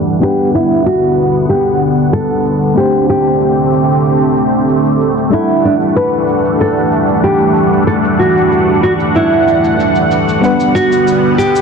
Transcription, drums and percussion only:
0.06 cabasa soft
0.22 cabasa medium
0.38 cabasa soft
0.54 cabasa medium
0.70 cabasa soft
0.86 cabasa medium
1.18 cabasa medium
1.35 cabasa soft
1.50 cabasa medium
1.82 cabasa medium
1.99 cabasa soft
2.14 cabasa medium
2.30 cabasa soft
2.46 cabasa medium
2.62 cabasa soft
2.78 cabasa medium
2.93 cabasa soft
3.09 cabasa medium
3.26 cabasa soft
3.41 cabasa medium
3.73 cabasa medium
3.89 cabasa soft
4.05 cabasa medium
4.37 cabasa medium
4.52 cabasa soft
4.68 cabasa medium
4.85 cabasa soft
5.01 cabasa medium
5.17 cabasa soft
5.34 cabasa medium
5.49 cabasa soft
5.64 cabasa medium
5.81 cabasa soft
5.97 cabasa medium
6.28 cabasa medium
6.45 cabasa soft
6.60 cabasa medium
6.92 cabasa medium
7.09 cabasa soft
7.24 cabasa medium
7.40 cabasa soft
7.56 cabasa medium
7.73 cabasa soft
7.89 cabasa medium
8.04 cabasa soft
8.21 cabasa medium
8.37 cabasa soft
8.52 cabasa soft
8.84 cabasa medium
9.00 cabasa soft
9.16 cabasa medium
9.48 cabasa medium
9.64 cabasa soft
9.80 cabasa soft
9.96 cabasa soft
10.12 cabasa medium
10.29 cabasa soft
10.44 cabasa medium
10.60 cabasa soft
10.76 cabasa medium
10.92 cabasa soft
11.08 cabasa soft
11.40 cabasa medium
11.56 cabasa soft

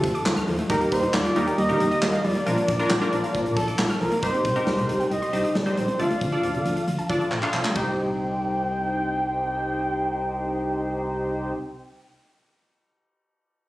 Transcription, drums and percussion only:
0.04 kick medium
0.04 closed hi-hat medium
0.15 closed hi-hat medium
0.26 snare loud
0.26 clap loud
0.37 closed hi-hat soft
0.48 open hi-hat medium
0.58 closed hi-hat medium
0.70 kick loud
0.70 closed hi-hat medium
0.81 closed hi-hat medium
0.92 kick medium
0.92 closed hi-hat medium
1.03 closed hi-hat soft
1.14 snare loud
1.14 clap medium
1.25 closed hi-hat soft
1.36 closed hi-hat medium
1.47 closed hi-hat medium
1.58 closed hi-hat medium
1.69 closed hi-hat medium
1.80 closed hi-hat medium
1.91 closed hi-hat medium
2.02 snare loud
2.02 clap loud
2.13 closed hi-hat soft
2.24 open hi-hat medium
2.35 closed hi-hat medium
2.46 closed hi-hat medium
2.57 closed hi-hat medium
2.68 kick medium
2.68 closed hi-hat medium
2.79 closed hi-hat soft
2.90 snare loud
2.90 clap loud
3.01 closed hi-hat soft
3.12 closed hi-hat medium
3.24 closed hi-hat medium
3.35 kick loud
3.35 closed hi-hat medium
3.46 closed hi-hat medium
3.56 kick medium
3.56 closed hi-hat medium
3.68 closed hi-hat medium
3.79 snare loud
3.79 clap medium
3.90 closed hi-hat medium
4.01 open hi-hat medium
4.11 closed hi-hat medium
4.23 kick loud
4.23 closed hi-hat medium
4.34 closed hi-hat medium
4.45 kick medium
4.45 closed hi-hat medium
4.56 closed hi-hat soft
4.67 snare loud
4.78 closed hi-hat soft
4.89 closed hi-hat medium
5.00 closed hi-hat medium
5.11 closed hi-hat medium
5.22 closed hi-hat soft
5.33 closed hi-hat medium
5.44 closed hi-hat soft
5.55 snare loud
5.66 closed hi-hat soft
5.77 closed hi-hat medium
5.88 closed hi-hat soft
5.99 closed hi-hat medium
6.10 closed hi-hat medium
6.21 kick medium
6.21 closed hi-hat medium
6.32 closed hi-hat soft
6.43 closed hi-hat medium
6.54 closed hi-hat soft
6.65 closed hi-hat medium
6.77 closed hi-hat medium
6.87 closed hi-hat medium
6.99 closed hi-hat soft
7.09 kick medium
7.09 closed hi-hat medium
7.21 closed hi-hat soft
7.32 clap medium
7.43 clap medium
7.54 clap medium
7.65 clap medium
7.76 kick loud
7.76 ride medium

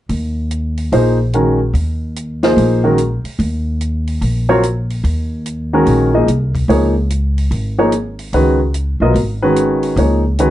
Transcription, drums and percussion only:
0.09 open hi-hat soft
0.51 closed hi-hat soft
0.77 open hi-hat soft
0.92 open hi-hat soft
1.33 closed hi-hat soft
1.75 open hi-hat soft
2.16 closed hi-hat soft
2.43 snare soft
2.43 open hi-hat soft
2.58 open hi-hat soft
2.98 closed hi-hat soft
3.25 open hi-hat soft
3.39 open hi-hat soft
3.81 closed hi-hat soft
4.07 open hi-hat soft
4.22 open hi-hat soft
4.63 closed hi-hat soft
4.90 open hi-hat soft
5.05 open hi-hat soft
5.46 closed hi-hat soft
5.87 open hi-hat soft
6.28 closed hi-hat soft
6.55 kick medium
6.55 open hi-hat soft
6.70 open hi-hat soft
7.10 closed hi-hat soft
7.38 open hi-hat soft
7.52 open hi-hat soft
7.92 closed hi-hat soft
8.19 open hi-hat soft
8.33 open hi-hat soft
8.74 closed hi-hat soft
9.15 open hi-hat soft
9.56 closed hi-hat medium
9.83 open hi-hat soft
9.97 open hi-hat soft
10.39 closed hi-hat soft

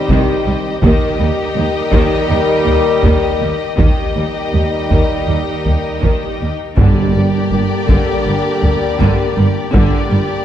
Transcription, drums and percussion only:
0.09 taiko medium
0.82 taiko loud
1.92 taiko medium
2.66 taiko low medium
3.03 taiko medium
3.78 taiko medium
4.90 taiko medium
5.66 taiko low soft
6.03 taiko medium
6.77 taiko loud
7.89 taiko medium
8.63 taiko low medium
9.00 taiko medium
9.74 taiko loud

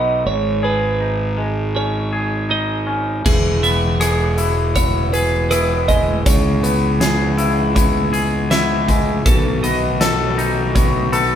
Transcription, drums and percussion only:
3.26 kick loud
3.26 crash medium
3.64 closed hi-hat soft
4.01 cross-stick medium
4.01 closed hi-hat medium
4.38 closed hi-hat soft
4.76 kick medium
4.76 closed hi-hat medium
5.13 closed hi-hat medium
5.51 cross-stick medium
5.51 closed hi-hat medium
5.89 kick medium
5.89 closed hi-hat medium
6.26 kick loud
6.26 closed hi-hat medium
6.64 closed hi-hat medium
7.01 snare medium
7.01 closed hi-hat medium
7.38 closed hi-hat medium
7.76 kick medium
7.76 closed hi-hat medium
8.14 closed hi-hat soft
8.51 snare medium
8.51 closed hi-hat medium
8.88 kick medium
8.88 closed hi-hat soft
9.26 kick loud
9.26 closed hi-hat medium
9.64 closed hi-hat medium
10.01 snare medium
10.01 closed hi-hat medium
10.39 closed hi-hat soft
10.76 kick medium
10.76 closed hi-hat medium
11.13 closed hi-hat soft

